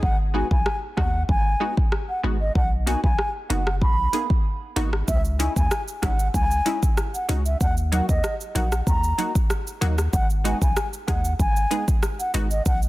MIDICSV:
0, 0, Header, 1, 5, 480
1, 0, Start_track
1, 0, Key_signature, 5, "minor"
1, 0, Tempo, 631579
1, 21, Time_signature, 4, 2, 24, 8
1, 9795, End_track
2, 0, Start_track
2, 0, Title_t, "Flute"
2, 0, Program_c, 0, 73
2, 20, Note_on_c, 0, 78, 106
2, 123, Note_off_c, 0, 78, 0
2, 262, Note_on_c, 0, 80, 78
2, 364, Note_off_c, 0, 80, 0
2, 388, Note_on_c, 0, 80, 74
2, 582, Note_off_c, 0, 80, 0
2, 741, Note_on_c, 0, 78, 85
2, 935, Note_off_c, 0, 78, 0
2, 980, Note_on_c, 0, 80, 101
2, 1326, Note_off_c, 0, 80, 0
2, 1588, Note_on_c, 0, 78, 64
2, 1679, Note_off_c, 0, 78, 0
2, 1828, Note_on_c, 0, 75, 72
2, 1919, Note_off_c, 0, 75, 0
2, 1941, Note_on_c, 0, 78, 110
2, 2044, Note_off_c, 0, 78, 0
2, 2182, Note_on_c, 0, 80, 81
2, 2284, Note_off_c, 0, 80, 0
2, 2309, Note_on_c, 0, 80, 79
2, 2503, Note_off_c, 0, 80, 0
2, 2661, Note_on_c, 0, 78, 71
2, 2855, Note_off_c, 0, 78, 0
2, 2901, Note_on_c, 0, 83, 100
2, 3246, Note_off_c, 0, 83, 0
2, 3860, Note_on_c, 0, 76, 106
2, 3963, Note_off_c, 0, 76, 0
2, 4101, Note_on_c, 0, 80, 78
2, 4204, Note_off_c, 0, 80, 0
2, 4228, Note_on_c, 0, 80, 75
2, 4422, Note_off_c, 0, 80, 0
2, 4581, Note_on_c, 0, 78, 90
2, 4775, Note_off_c, 0, 78, 0
2, 4821, Note_on_c, 0, 80, 99
2, 5166, Note_off_c, 0, 80, 0
2, 5429, Note_on_c, 0, 78, 66
2, 5520, Note_off_c, 0, 78, 0
2, 5668, Note_on_c, 0, 76, 74
2, 5759, Note_off_c, 0, 76, 0
2, 5781, Note_on_c, 0, 78, 112
2, 5883, Note_off_c, 0, 78, 0
2, 6021, Note_on_c, 0, 78, 78
2, 6124, Note_off_c, 0, 78, 0
2, 6149, Note_on_c, 0, 75, 78
2, 6343, Note_off_c, 0, 75, 0
2, 6501, Note_on_c, 0, 78, 74
2, 6695, Note_off_c, 0, 78, 0
2, 6742, Note_on_c, 0, 82, 100
2, 7087, Note_off_c, 0, 82, 0
2, 7701, Note_on_c, 0, 78, 106
2, 7804, Note_off_c, 0, 78, 0
2, 7941, Note_on_c, 0, 80, 76
2, 8044, Note_off_c, 0, 80, 0
2, 8068, Note_on_c, 0, 80, 72
2, 8262, Note_off_c, 0, 80, 0
2, 8420, Note_on_c, 0, 78, 91
2, 8614, Note_off_c, 0, 78, 0
2, 8661, Note_on_c, 0, 80, 104
2, 9006, Note_off_c, 0, 80, 0
2, 9268, Note_on_c, 0, 78, 68
2, 9359, Note_off_c, 0, 78, 0
2, 9509, Note_on_c, 0, 75, 73
2, 9600, Note_off_c, 0, 75, 0
2, 9621, Note_on_c, 0, 78, 107
2, 9724, Note_off_c, 0, 78, 0
2, 9795, End_track
3, 0, Start_track
3, 0, Title_t, "Synth stab"
3, 0, Program_c, 1, 62
3, 257, Note_on_c, 1, 56, 78
3, 259, Note_on_c, 1, 59, 73
3, 261, Note_on_c, 1, 63, 72
3, 264, Note_on_c, 1, 66, 88
3, 361, Note_off_c, 1, 56, 0
3, 362, Note_off_c, 1, 59, 0
3, 363, Note_off_c, 1, 63, 0
3, 364, Note_off_c, 1, 66, 0
3, 737, Note_on_c, 1, 56, 74
3, 739, Note_on_c, 1, 59, 64
3, 741, Note_on_c, 1, 63, 67
3, 743, Note_on_c, 1, 66, 81
3, 840, Note_off_c, 1, 56, 0
3, 841, Note_off_c, 1, 59, 0
3, 843, Note_off_c, 1, 63, 0
3, 844, Note_off_c, 1, 66, 0
3, 1217, Note_on_c, 1, 56, 81
3, 1219, Note_on_c, 1, 59, 74
3, 1221, Note_on_c, 1, 63, 76
3, 1223, Note_on_c, 1, 66, 88
3, 1321, Note_off_c, 1, 56, 0
3, 1322, Note_off_c, 1, 59, 0
3, 1323, Note_off_c, 1, 63, 0
3, 1324, Note_off_c, 1, 66, 0
3, 1697, Note_on_c, 1, 56, 75
3, 1700, Note_on_c, 1, 59, 68
3, 1702, Note_on_c, 1, 63, 70
3, 1704, Note_on_c, 1, 66, 88
3, 1801, Note_off_c, 1, 56, 0
3, 1802, Note_off_c, 1, 59, 0
3, 1803, Note_off_c, 1, 63, 0
3, 1804, Note_off_c, 1, 66, 0
3, 2178, Note_on_c, 1, 58, 77
3, 2180, Note_on_c, 1, 59, 74
3, 2182, Note_on_c, 1, 63, 70
3, 2184, Note_on_c, 1, 66, 86
3, 2281, Note_off_c, 1, 58, 0
3, 2282, Note_off_c, 1, 59, 0
3, 2283, Note_off_c, 1, 63, 0
3, 2284, Note_off_c, 1, 66, 0
3, 2657, Note_on_c, 1, 58, 73
3, 2659, Note_on_c, 1, 59, 69
3, 2661, Note_on_c, 1, 63, 68
3, 2664, Note_on_c, 1, 66, 79
3, 2761, Note_off_c, 1, 58, 0
3, 2762, Note_off_c, 1, 59, 0
3, 2763, Note_off_c, 1, 63, 0
3, 2764, Note_off_c, 1, 66, 0
3, 3138, Note_on_c, 1, 58, 80
3, 3140, Note_on_c, 1, 59, 71
3, 3142, Note_on_c, 1, 63, 74
3, 3144, Note_on_c, 1, 68, 89
3, 3241, Note_off_c, 1, 58, 0
3, 3242, Note_off_c, 1, 59, 0
3, 3243, Note_off_c, 1, 63, 0
3, 3244, Note_off_c, 1, 68, 0
3, 3618, Note_on_c, 1, 58, 89
3, 3620, Note_on_c, 1, 59, 83
3, 3622, Note_on_c, 1, 63, 87
3, 3624, Note_on_c, 1, 66, 99
3, 3721, Note_off_c, 1, 58, 0
3, 3722, Note_off_c, 1, 59, 0
3, 3723, Note_off_c, 1, 63, 0
3, 3724, Note_off_c, 1, 66, 0
3, 4098, Note_on_c, 1, 56, 78
3, 4100, Note_on_c, 1, 61, 73
3, 4102, Note_on_c, 1, 63, 69
3, 4104, Note_on_c, 1, 64, 86
3, 4201, Note_off_c, 1, 56, 0
3, 4202, Note_off_c, 1, 61, 0
3, 4203, Note_off_c, 1, 63, 0
3, 4204, Note_off_c, 1, 64, 0
3, 4577, Note_on_c, 1, 56, 72
3, 4579, Note_on_c, 1, 61, 65
3, 4581, Note_on_c, 1, 63, 65
3, 4584, Note_on_c, 1, 64, 81
3, 4681, Note_off_c, 1, 56, 0
3, 4682, Note_off_c, 1, 61, 0
3, 4683, Note_off_c, 1, 63, 0
3, 4684, Note_off_c, 1, 64, 0
3, 5058, Note_on_c, 1, 56, 81
3, 5059, Note_on_c, 1, 61, 76
3, 5062, Note_on_c, 1, 63, 72
3, 5064, Note_on_c, 1, 64, 87
3, 5161, Note_off_c, 1, 56, 0
3, 5162, Note_off_c, 1, 61, 0
3, 5163, Note_off_c, 1, 63, 0
3, 5164, Note_off_c, 1, 64, 0
3, 5537, Note_on_c, 1, 56, 75
3, 5539, Note_on_c, 1, 61, 70
3, 5541, Note_on_c, 1, 63, 71
3, 5543, Note_on_c, 1, 66, 84
3, 5641, Note_off_c, 1, 56, 0
3, 5642, Note_off_c, 1, 61, 0
3, 5643, Note_off_c, 1, 63, 0
3, 5644, Note_off_c, 1, 66, 0
3, 6017, Note_on_c, 1, 54, 75
3, 6019, Note_on_c, 1, 58, 73
3, 6021, Note_on_c, 1, 63, 72
3, 6024, Note_on_c, 1, 66, 89
3, 6121, Note_off_c, 1, 54, 0
3, 6122, Note_off_c, 1, 58, 0
3, 6123, Note_off_c, 1, 63, 0
3, 6124, Note_off_c, 1, 66, 0
3, 6497, Note_on_c, 1, 54, 73
3, 6500, Note_on_c, 1, 58, 66
3, 6502, Note_on_c, 1, 63, 70
3, 6504, Note_on_c, 1, 66, 80
3, 6601, Note_off_c, 1, 54, 0
3, 6602, Note_off_c, 1, 58, 0
3, 6603, Note_off_c, 1, 63, 0
3, 6604, Note_off_c, 1, 66, 0
3, 6977, Note_on_c, 1, 54, 81
3, 6979, Note_on_c, 1, 58, 71
3, 6981, Note_on_c, 1, 63, 75
3, 6983, Note_on_c, 1, 66, 88
3, 7080, Note_off_c, 1, 54, 0
3, 7082, Note_off_c, 1, 58, 0
3, 7083, Note_off_c, 1, 63, 0
3, 7084, Note_off_c, 1, 66, 0
3, 7457, Note_on_c, 1, 54, 92
3, 7459, Note_on_c, 1, 58, 86
3, 7461, Note_on_c, 1, 63, 85
3, 7463, Note_on_c, 1, 66, 98
3, 7561, Note_off_c, 1, 54, 0
3, 7562, Note_off_c, 1, 58, 0
3, 7563, Note_off_c, 1, 63, 0
3, 7564, Note_off_c, 1, 66, 0
3, 7937, Note_on_c, 1, 56, 75
3, 7939, Note_on_c, 1, 59, 72
3, 7941, Note_on_c, 1, 63, 74
3, 7943, Note_on_c, 1, 66, 87
3, 8041, Note_off_c, 1, 56, 0
3, 8042, Note_off_c, 1, 59, 0
3, 8043, Note_off_c, 1, 63, 0
3, 8044, Note_off_c, 1, 66, 0
3, 8418, Note_on_c, 1, 56, 77
3, 8419, Note_on_c, 1, 59, 68
3, 8421, Note_on_c, 1, 63, 69
3, 8424, Note_on_c, 1, 68, 79
3, 8521, Note_off_c, 1, 56, 0
3, 8522, Note_off_c, 1, 59, 0
3, 8523, Note_off_c, 1, 63, 0
3, 8524, Note_off_c, 1, 68, 0
3, 8897, Note_on_c, 1, 56, 84
3, 8899, Note_on_c, 1, 59, 72
3, 8901, Note_on_c, 1, 63, 74
3, 8903, Note_on_c, 1, 68, 86
3, 9001, Note_off_c, 1, 56, 0
3, 9002, Note_off_c, 1, 59, 0
3, 9003, Note_off_c, 1, 63, 0
3, 9004, Note_off_c, 1, 68, 0
3, 9377, Note_on_c, 1, 56, 74
3, 9380, Note_on_c, 1, 59, 71
3, 9382, Note_on_c, 1, 63, 67
3, 9384, Note_on_c, 1, 66, 84
3, 9481, Note_off_c, 1, 56, 0
3, 9482, Note_off_c, 1, 59, 0
3, 9483, Note_off_c, 1, 63, 0
3, 9484, Note_off_c, 1, 66, 0
3, 9795, End_track
4, 0, Start_track
4, 0, Title_t, "Sub bass"
4, 0, Program_c, 2, 38
4, 21, Note_on_c, 2, 32, 104
4, 331, Note_off_c, 2, 32, 0
4, 388, Note_on_c, 2, 35, 97
4, 483, Note_off_c, 2, 35, 0
4, 741, Note_on_c, 2, 39, 91
4, 943, Note_off_c, 2, 39, 0
4, 980, Note_on_c, 2, 32, 104
4, 1183, Note_off_c, 2, 32, 0
4, 1701, Note_on_c, 2, 32, 94
4, 1903, Note_off_c, 2, 32, 0
4, 1941, Note_on_c, 2, 35, 109
4, 2251, Note_off_c, 2, 35, 0
4, 2308, Note_on_c, 2, 35, 91
4, 2403, Note_off_c, 2, 35, 0
4, 2661, Note_on_c, 2, 30, 92
4, 2899, Note_on_c, 2, 35, 102
4, 2911, Note_off_c, 2, 30, 0
4, 3103, Note_off_c, 2, 35, 0
4, 3620, Note_on_c, 2, 32, 86
4, 3823, Note_off_c, 2, 32, 0
4, 3861, Note_on_c, 2, 37, 106
4, 4171, Note_off_c, 2, 37, 0
4, 4228, Note_on_c, 2, 39, 91
4, 4323, Note_off_c, 2, 39, 0
4, 4581, Note_on_c, 2, 32, 87
4, 4784, Note_off_c, 2, 32, 0
4, 4820, Note_on_c, 2, 37, 107
4, 5023, Note_off_c, 2, 37, 0
4, 5541, Note_on_c, 2, 37, 89
4, 5743, Note_off_c, 2, 37, 0
4, 5781, Note_on_c, 2, 39, 102
4, 6091, Note_off_c, 2, 39, 0
4, 6148, Note_on_c, 2, 39, 92
4, 6243, Note_off_c, 2, 39, 0
4, 6501, Note_on_c, 2, 34, 93
4, 6703, Note_off_c, 2, 34, 0
4, 6740, Note_on_c, 2, 39, 104
4, 6943, Note_off_c, 2, 39, 0
4, 7461, Note_on_c, 2, 39, 86
4, 7664, Note_off_c, 2, 39, 0
4, 7701, Note_on_c, 2, 32, 105
4, 8011, Note_off_c, 2, 32, 0
4, 8068, Note_on_c, 2, 35, 95
4, 8163, Note_off_c, 2, 35, 0
4, 8421, Note_on_c, 2, 39, 91
4, 8623, Note_off_c, 2, 39, 0
4, 8660, Note_on_c, 2, 32, 102
4, 8863, Note_off_c, 2, 32, 0
4, 9381, Note_on_c, 2, 32, 94
4, 9583, Note_off_c, 2, 32, 0
4, 9620, Note_on_c, 2, 35, 113
4, 9795, Note_off_c, 2, 35, 0
4, 9795, End_track
5, 0, Start_track
5, 0, Title_t, "Drums"
5, 21, Note_on_c, 9, 36, 116
5, 97, Note_off_c, 9, 36, 0
5, 388, Note_on_c, 9, 36, 92
5, 464, Note_off_c, 9, 36, 0
5, 501, Note_on_c, 9, 37, 97
5, 577, Note_off_c, 9, 37, 0
5, 741, Note_on_c, 9, 36, 96
5, 742, Note_on_c, 9, 37, 91
5, 817, Note_off_c, 9, 36, 0
5, 818, Note_off_c, 9, 37, 0
5, 979, Note_on_c, 9, 36, 101
5, 1055, Note_off_c, 9, 36, 0
5, 1348, Note_on_c, 9, 36, 96
5, 1424, Note_off_c, 9, 36, 0
5, 1460, Note_on_c, 9, 37, 86
5, 1536, Note_off_c, 9, 37, 0
5, 1941, Note_on_c, 9, 36, 112
5, 2017, Note_off_c, 9, 36, 0
5, 2182, Note_on_c, 9, 42, 71
5, 2258, Note_off_c, 9, 42, 0
5, 2308, Note_on_c, 9, 36, 92
5, 2384, Note_off_c, 9, 36, 0
5, 2421, Note_on_c, 9, 37, 94
5, 2497, Note_off_c, 9, 37, 0
5, 2662, Note_on_c, 9, 42, 85
5, 2738, Note_off_c, 9, 42, 0
5, 2788, Note_on_c, 9, 37, 94
5, 2864, Note_off_c, 9, 37, 0
5, 2900, Note_on_c, 9, 36, 97
5, 2976, Note_off_c, 9, 36, 0
5, 3141, Note_on_c, 9, 42, 70
5, 3217, Note_off_c, 9, 42, 0
5, 3268, Note_on_c, 9, 36, 94
5, 3344, Note_off_c, 9, 36, 0
5, 3621, Note_on_c, 9, 42, 76
5, 3697, Note_off_c, 9, 42, 0
5, 3747, Note_on_c, 9, 37, 84
5, 3823, Note_off_c, 9, 37, 0
5, 3861, Note_on_c, 9, 36, 117
5, 3861, Note_on_c, 9, 82, 89
5, 3937, Note_off_c, 9, 36, 0
5, 3937, Note_off_c, 9, 82, 0
5, 3987, Note_on_c, 9, 82, 53
5, 4063, Note_off_c, 9, 82, 0
5, 4103, Note_on_c, 9, 42, 74
5, 4103, Note_on_c, 9, 82, 53
5, 4179, Note_off_c, 9, 42, 0
5, 4179, Note_off_c, 9, 82, 0
5, 4228, Note_on_c, 9, 36, 90
5, 4229, Note_on_c, 9, 82, 67
5, 4304, Note_off_c, 9, 36, 0
5, 4305, Note_off_c, 9, 82, 0
5, 4341, Note_on_c, 9, 37, 96
5, 4341, Note_on_c, 9, 82, 64
5, 4417, Note_off_c, 9, 37, 0
5, 4417, Note_off_c, 9, 82, 0
5, 4468, Note_on_c, 9, 82, 48
5, 4544, Note_off_c, 9, 82, 0
5, 4581, Note_on_c, 9, 36, 97
5, 4582, Note_on_c, 9, 37, 95
5, 4582, Note_on_c, 9, 42, 86
5, 4582, Note_on_c, 9, 82, 60
5, 4657, Note_off_c, 9, 36, 0
5, 4658, Note_off_c, 9, 37, 0
5, 4658, Note_off_c, 9, 42, 0
5, 4658, Note_off_c, 9, 82, 0
5, 4707, Note_on_c, 9, 82, 80
5, 4783, Note_off_c, 9, 82, 0
5, 4820, Note_on_c, 9, 36, 99
5, 4821, Note_on_c, 9, 82, 73
5, 4896, Note_off_c, 9, 36, 0
5, 4897, Note_off_c, 9, 82, 0
5, 4949, Note_on_c, 9, 82, 55
5, 5025, Note_off_c, 9, 82, 0
5, 5061, Note_on_c, 9, 42, 70
5, 5061, Note_on_c, 9, 82, 50
5, 5137, Note_off_c, 9, 42, 0
5, 5137, Note_off_c, 9, 82, 0
5, 5188, Note_on_c, 9, 36, 96
5, 5189, Note_on_c, 9, 82, 70
5, 5264, Note_off_c, 9, 36, 0
5, 5265, Note_off_c, 9, 82, 0
5, 5301, Note_on_c, 9, 37, 85
5, 5301, Note_on_c, 9, 82, 62
5, 5377, Note_off_c, 9, 37, 0
5, 5377, Note_off_c, 9, 82, 0
5, 5430, Note_on_c, 9, 82, 55
5, 5506, Note_off_c, 9, 82, 0
5, 5541, Note_on_c, 9, 42, 78
5, 5541, Note_on_c, 9, 82, 55
5, 5617, Note_off_c, 9, 42, 0
5, 5617, Note_off_c, 9, 82, 0
5, 5667, Note_on_c, 9, 82, 69
5, 5743, Note_off_c, 9, 82, 0
5, 5781, Note_on_c, 9, 36, 113
5, 5781, Note_on_c, 9, 82, 87
5, 5857, Note_off_c, 9, 36, 0
5, 5857, Note_off_c, 9, 82, 0
5, 5907, Note_on_c, 9, 82, 53
5, 5983, Note_off_c, 9, 82, 0
5, 6023, Note_on_c, 9, 42, 71
5, 6023, Note_on_c, 9, 82, 51
5, 6099, Note_off_c, 9, 42, 0
5, 6099, Note_off_c, 9, 82, 0
5, 6148, Note_on_c, 9, 36, 92
5, 6150, Note_on_c, 9, 82, 65
5, 6224, Note_off_c, 9, 36, 0
5, 6226, Note_off_c, 9, 82, 0
5, 6262, Note_on_c, 9, 37, 96
5, 6262, Note_on_c, 9, 82, 68
5, 6338, Note_off_c, 9, 37, 0
5, 6338, Note_off_c, 9, 82, 0
5, 6389, Note_on_c, 9, 82, 49
5, 6465, Note_off_c, 9, 82, 0
5, 6503, Note_on_c, 9, 42, 81
5, 6503, Note_on_c, 9, 82, 59
5, 6579, Note_off_c, 9, 42, 0
5, 6579, Note_off_c, 9, 82, 0
5, 6628, Note_on_c, 9, 82, 80
5, 6629, Note_on_c, 9, 37, 92
5, 6704, Note_off_c, 9, 82, 0
5, 6705, Note_off_c, 9, 37, 0
5, 6740, Note_on_c, 9, 36, 98
5, 6742, Note_on_c, 9, 82, 70
5, 6816, Note_off_c, 9, 36, 0
5, 6818, Note_off_c, 9, 82, 0
5, 6868, Note_on_c, 9, 82, 56
5, 6944, Note_off_c, 9, 82, 0
5, 6982, Note_on_c, 9, 42, 72
5, 6982, Note_on_c, 9, 82, 51
5, 7058, Note_off_c, 9, 42, 0
5, 7058, Note_off_c, 9, 82, 0
5, 7108, Note_on_c, 9, 36, 96
5, 7109, Note_on_c, 9, 82, 69
5, 7184, Note_off_c, 9, 36, 0
5, 7185, Note_off_c, 9, 82, 0
5, 7221, Note_on_c, 9, 37, 86
5, 7221, Note_on_c, 9, 82, 64
5, 7297, Note_off_c, 9, 37, 0
5, 7297, Note_off_c, 9, 82, 0
5, 7350, Note_on_c, 9, 82, 55
5, 7426, Note_off_c, 9, 82, 0
5, 7461, Note_on_c, 9, 42, 78
5, 7461, Note_on_c, 9, 82, 56
5, 7537, Note_off_c, 9, 42, 0
5, 7537, Note_off_c, 9, 82, 0
5, 7587, Note_on_c, 9, 37, 86
5, 7587, Note_on_c, 9, 82, 68
5, 7663, Note_off_c, 9, 37, 0
5, 7663, Note_off_c, 9, 82, 0
5, 7701, Note_on_c, 9, 36, 112
5, 7701, Note_on_c, 9, 82, 86
5, 7777, Note_off_c, 9, 36, 0
5, 7777, Note_off_c, 9, 82, 0
5, 7827, Note_on_c, 9, 82, 52
5, 7903, Note_off_c, 9, 82, 0
5, 7943, Note_on_c, 9, 42, 71
5, 7943, Note_on_c, 9, 82, 53
5, 8019, Note_off_c, 9, 42, 0
5, 8019, Note_off_c, 9, 82, 0
5, 8068, Note_on_c, 9, 36, 90
5, 8069, Note_on_c, 9, 82, 69
5, 8144, Note_off_c, 9, 36, 0
5, 8145, Note_off_c, 9, 82, 0
5, 8182, Note_on_c, 9, 37, 96
5, 8182, Note_on_c, 9, 82, 66
5, 8258, Note_off_c, 9, 37, 0
5, 8258, Note_off_c, 9, 82, 0
5, 8309, Note_on_c, 9, 82, 46
5, 8385, Note_off_c, 9, 82, 0
5, 8421, Note_on_c, 9, 36, 96
5, 8423, Note_on_c, 9, 37, 95
5, 8423, Note_on_c, 9, 42, 83
5, 8423, Note_on_c, 9, 82, 61
5, 8497, Note_off_c, 9, 36, 0
5, 8499, Note_off_c, 9, 37, 0
5, 8499, Note_off_c, 9, 42, 0
5, 8499, Note_off_c, 9, 82, 0
5, 8547, Note_on_c, 9, 82, 81
5, 8623, Note_off_c, 9, 82, 0
5, 8660, Note_on_c, 9, 36, 100
5, 8662, Note_on_c, 9, 82, 71
5, 8736, Note_off_c, 9, 36, 0
5, 8738, Note_off_c, 9, 82, 0
5, 8789, Note_on_c, 9, 82, 59
5, 8865, Note_off_c, 9, 82, 0
5, 8901, Note_on_c, 9, 42, 71
5, 8901, Note_on_c, 9, 82, 51
5, 8977, Note_off_c, 9, 42, 0
5, 8977, Note_off_c, 9, 82, 0
5, 9028, Note_on_c, 9, 36, 98
5, 9029, Note_on_c, 9, 82, 71
5, 9104, Note_off_c, 9, 36, 0
5, 9105, Note_off_c, 9, 82, 0
5, 9140, Note_on_c, 9, 37, 83
5, 9140, Note_on_c, 9, 82, 63
5, 9216, Note_off_c, 9, 37, 0
5, 9216, Note_off_c, 9, 82, 0
5, 9269, Note_on_c, 9, 82, 52
5, 9345, Note_off_c, 9, 82, 0
5, 9380, Note_on_c, 9, 42, 77
5, 9380, Note_on_c, 9, 82, 57
5, 9456, Note_off_c, 9, 42, 0
5, 9456, Note_off_c, 9, 82, 0
5, 9506, Note_on_c, 9, 82, 71
5, 9582, Note_off_c, 9, 82, 0
5, 9620, Note_on_c, 9, 82, 90
5, 9621, Note_on_c, 9, 36, 118
5, 9696, Note_off_c, 9, 82, 0
5, 9697, Note_off_c, 9, 36, 0
5, 9746, Note_on_c, 9, 82, 52
5, 9795, Note_off_c, 9, 82, 0
5, 9795, End_track
0, 0, End_of_file